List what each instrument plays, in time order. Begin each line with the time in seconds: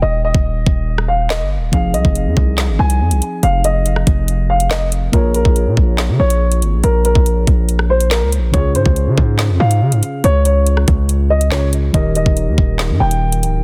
0.02 808-style bass D#1, grand piano D#5
0.25 grand piano D#5
0.34 808-style bass D#1, kick
0.66 808-style bass D#1, kick
0.98 cross-stick
1.08 grand piano F5
1.30 grand piano D#5, snare, clap
1.41 808-style bass G1
1.57 808-style bass D#1
1.71 808-style bass F1, synth keys F3 C4 D#4 G#4, grand piano F5, kick, closed hi-hat
1.94 808-style bass C2, grand piano D#5, closed hi-hat
2.05 808-style bass F1, kick
2.15 closed hi-hat
2.26 808-style bass F2
2.37 808-style bass C2, kick
2.58 snare, clap
2.69 808-style bass G#1
2.79 808-style bass C2, grand piano G#5
2.90 closed hi-hat
3.00 808-style bass F2
3.11 808-style bass C2, closed hi-hat
3.22 closed hi-hat
3.43 808-style bass F1, grand piano F5, closed hi-hat
3.64 grand piano D#5, closed hi-hat
3.86 closed hi-hat
3.96 cross-stick
4.07 808-style bass F1, kick, closed hi-hat
4.28 closed hi-hat
4.50 grand piano F5
4.60 closed hi-hat
4.71 grand piano D#5, snare, clap
4.92 closed hi-hat
5.12 808-style bass A#1, synth keys A#3 F4 G#4 C#5, grand piano A#4, kick, closed hi-hat
5.34 grand piano A#4, closed hi-hat
5.45 808-style bass A#1, kick
5.56 closed hi-hat
5.66 808-style bass A#2
5.77 808-style bass A#1, kick
5.98 snare, clap
6.09 808-style bass C#3
6.19 808-style bass A#1, grand piano C#5
6.30 closed hi-hat
6.52 closed hi-hat
6.62 808-style bass G#1, closed hi-hat
6.73 808-style bass A#1
6.84 808-style bass A#1, grand piano A#4, closed hi-hat
7.05 grand piano A#4, closed hi-hat
7.15 808-style bass A#1, kick
7.26 closed hi-hat
7.47 808-style bass A#1, kick, closed hi-hat
7.69 closed hi-hat
7.79 cross-stick
7.90 grand piano C5
8.01 closed hi-hat
8.11 grand piano A#4, snare, clap
8.22 808-style bass C#2
8.32 closed hi-hat
8.38 808-style bass A#1
8.52 808-style bass C#2, synth keys C#3 C#4 F4 G#4, grand piano C#5, kick, closed hi-hat
8.75 808-style bass G#2, grand piano C5, closed hi-hat
8.86 808-style bass C#2, kick
8.96 closed hi-hat
9.07 808-style bass C#3
9.18 808-style bass G#2, kick
9.39 snare, clap
9.49 808-style bass F2
9.60 808-style bass G#2, grand piano F5
9.71 closed hi-hat
9.81 808-style bass C#3
9.92 808-style bass G#2, closed hi-hat
10.03 closed hi-hat
10.24 808-style bass C#2, grand piano C#5, closed hi-hat
10.45 grand piano C#5, closed hi-hat
10.67 closed hi-hat
10.77 cross-stick
10.88 808-style bass C#2, kick, closed hi-hat
11.09 closed hi-hat
11.30 grand piano D#5
11.41 closed hi-hat
11.51 synth keys C#3 C#4 F4 G#4, grand piano C#5, snare, clap
11.73 closed hi-hat
11.93 808-style bass D#1, synth keys D#3 D#4 G4 A#4, grand piano D#5, kick, closed hi-hat
12.15 grand piano D#5, closed hi-hat
12.26 808-style bass D#1, kick
12.37 closed hi-hat
12.47 808-style bass D#2
12.58 808-style bass D#1, kick
12.79 snare, clap
12.90 808-style bass G2
13.00 808-style bass D#1, grand piano G5
13.11 closed hi-hat
13.32 closed hi-hat
13.43 808-style bass C#1, closed hi-hat
13.54 808-style bass D#1